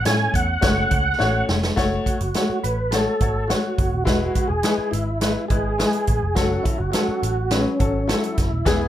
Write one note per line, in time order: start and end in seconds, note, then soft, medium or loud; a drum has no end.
0.05 0.27 A2 loud
0.05 0.44 A3 medium
0.05 0.44 C#4 medium
0.05 0.44 E4 medium
0.05 0.44 C#5 medium
0.05 0.35 G#5 loud
0.05 snare loud
0.05 closed hi-hat loud
0.34 0.55 E2 loud
0.34 1.45 F#5 loud
0.34 kick medium
0.34 closed hi-hat medium
0.61 0.84 F#1 loud
0.61 1.01 A3 medium
0.61 1.01 C#4 medium
0.61 1.01 F#4 medium
0.61 1.01 C#5 medium
0.61 kick medium
0.61 snare loud
0.61 closed hi-hat medium
0.91 1.12 C#2 medium
0.91 kick medium
0.91 closed hi-hat medium
1.18 1.41 A1 medium
1.18 1.58 A3 medium
1.18 1.58 C#4 medium
1.18 1.58 F#4 medium
1.18 1.59 C#5 loud
1.18 snare medium
1.49 1.70 F1 medium
1.49 snare loud
1.63 snare loud
1.76 1.98 F#1 loud
1.76 2.16 A3 loud
1.76 2.16 F#4 loud
1.76 2.16 C#5 loud
1.76 kick medium
1.76 snare loud
1.76 closed hi-hat medium
2.06 2.59 F#4 medium
2.06 kick medium
2.06 closed hi-hat medium
2.21 2.31 F#1 medium
2.21 closed hi-hat medium
2.34 2.74 A3 medium
2.34 2.74 F#4 medium
2.34 2.74 C#5 medium
2.34 snare medium
2.34 closed hi-hat medium
2.50 muted picked electric bass stroke soft
2.63 3.06 A1 medium
2.63 2.93 B4 loud
2.63 closed hi-hat medium
2.91 3.12 A3 medium
2.91 3.12 F#4 medium
2.91 3.51 A4 loud
2.91 3.12 C#5 medium
2.91 snare medium
2.91 closed hi-hat medium
3.20 3.52 G#1 medium
3.20 3.40 A3 medium
3.20 3.40 F#4 medium
3.20 3.41 C#5 medium
3.20 kick medium
3.20 closed hi-hat medium
3.48 3.88 A3 medium
3.48 4.04 F#4 medium
3.48 3.88 F#4 medium
3.48 3.89 C#5 medium
3.48 snare medium
3.48 closed hi-hat medium
3.78 3.89 F#1 medium
3.78 kick loud
3.78 closed hi-hat medium
3.92 4.03 D#1 medium
4.05 4.28 E1 loud
4.05 4.45 G#3 medium
4.05 4.45 E4 medium
4.05 4.50 F#4 loud
4.05 4.46 B4 loud
4.05 kick loud
4.05 snare loud
4.05 closed hi-hat medium
4.35 kick loud
4.35 closed hi-hat medium
4.48 4.60 E1 medium
4.48 4.93 G#4 loud
4.63 5.03 G#3 medium
4.63 5.03 E4 medium
4.63 5.03 B4 medium
4.63 snare loud
4.63 closed hi-hat loud
4.78 muted picked electric bass stroke medium
4.91 5.35 G#1 medium
4.91 5.45 E4 loud
4.91 closed hi-hat medium
5.21 5.41 G#3 medium
5.21 5.41 E4 medium
5.21 5.41 B4 medium
5.21 snare loud
5.21 closed hi-hat medium
5.48 5.82 G#1 medium
5.48 5.70 G#3 medium
5.48 5.70 E4 medium
5.48 6.38 G#4 medium
5.48 5.70 B4 medium
5.48 kick medium
5.48 closed hi-hat medium
5.78 6.17 G#3 medium
5.78 6.18 E4 medium
5.78 6.18 B4 medium
5.78 snare loud
5.78 closed hi-hat medium
5.93 closed hi-hat soft
6.07 6.19 A1 medium
6.07 kick medium
6.07 closed hi-hat medium
6.23 6.33 F1 medium
6.35 6.58 F#1 loud
6.35 6.75 F#3 medium
6.35 6.75 C#4 medium
6.35 6.65 F#4 medium
6.35 6.76 A4 loud
6.35 kick loud
6.35 snare loud
6.35 closed hi-hat medium
6.63 6.79 E4 medium
6.63 kick medium
6.63 closed hi-hat medium
6.78 6.90 F#1 loud
6.78 6.91 F#4 medium
6.92 7.32 F#3 medium
6.92 7.32 C#4 medium
6.92 7.52 F#4 medium
6.92 7.33 A4 medium
6.92 snare loud
6.92 closed hi-hat medium
7.08 muted picked electric bass stroke medium
7.23 7.65 A1 loud
7.23 closed hi-hat medium
7.51 7.70 F#3 medium
7.51 8.10 C#4 medium
7.51 7.71 C#4 medium
7.51 7.71 B4 medium
7.51 snare loud
7.51 closed hi-hat loud
7.79 8.12 G#1 medium
7.79 7.99 F#3 medium
7.79 7.99 C#4 medium
7.79 7.99 A4 medium
7.79 kick medium
7.79 closed hi-hat medium
8.08 8.47 F#3 medium
8.08 8.47 C#4 medium
8.08 8.88 E4 medium
8.08 8.47 A4 medium
8.08 snare medium
8.08 closed hi-hat medium
8.24 closed hi-hat soft
8.38 8.48 F#1 medium
8.38 kick medium
8.38 snare soft
8.38 closed hi-hat medium
8.52 8.62 D#1 loud
8.65 8.87 E1 loud
8.65 8.88 E3 loud
8.65 8.88 B3 medium
8.65 8.88 G#4 loud
8.65 kick loud
8.65 snare loud
8.65 closed hi-hat medium